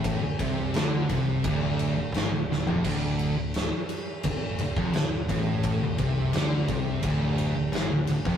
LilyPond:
<<
  \new Staff \with { instrumentName = "Distorted electric guitar" } { \clef bass \time 4/4 \key d \minor \tempo 4 = 86 a,16 d,16 c8 d8 c8 d,8. d,16 gis,16 d,16 d,16 f,16 | d,8. d,8 r8. d,8 d,16 f,16 d,8 a,8~ | a,16 d,16 c8 d8 c8 d,8. d,16 gis,16 d,16 d,16 f,16 | }
  \new Staff \with { instrumentName = "Distorted electric guitar" } { \clef bass \time 4/4 \key d \minor a,16 d,16 c8 d8 c8 d,8. d,16 gis,16 d,16 d,16 f,16 | d,8. d,8 r8. d,8 d,16 f,16 d,8 a,8~ | a,16 d,16 c8 d8 c8 d,8. d,16 gis,16 d,16 d,16 f,16 | }
  \new Staff \with { instrumentName = "Distorted electric guitar" } { \clef bass \time 4/4 \key d \minor a,16 d,16 c8 d8 c8 d,8. d,16 gis,16 d,16 d,16 f,16 | d,8. d,8 r8. d,8 d,16 f,16 d,8 a,8~ | a,16 d,16 c8 d8 c8 d,8. d,16 gis,16 d,16 d,16 f,16 | }
  \new Staff \with { instrumentName = "Fingered electric bass" } { \clef bass \time 4/4 \key d \minor a,,16 d,,16 c,8 d,8 c,8 d,,8. d,,16 gis,,16 d,,16 d,,16 f,,16 | d,,8. d,,8 r8. d,,8 d,,16 f,,16 d,,8 a,,8~ | a,,16 d,,16 c,8 d,8 c,8 d,,8. d,,16 gis,,16 d,,16 d,,16 f,,16 | }
  \new DrumStaff \with { instrumentName = "Drums" } \drummode { \time 4/4 <bd cymr>8 <bd cymr>8 <cymr sn>8 <bd cymr>8 <bd cymr>8 cymr8 <cymr sn>8 sn16 tomfh16 | <cymc bd>8 cymr8 <cymr sn>8 cymr8 <bd cymr>8 cymr16 bd16 <cymr sn>8 <bd cymr>8 | <bd cymr>8 <bd cymr>8 <cymr sn>8 <bd cymr>8 <bd cymr>8 cymr8 <cymr sn>8 cymr16 <bd sn>16 | }
>>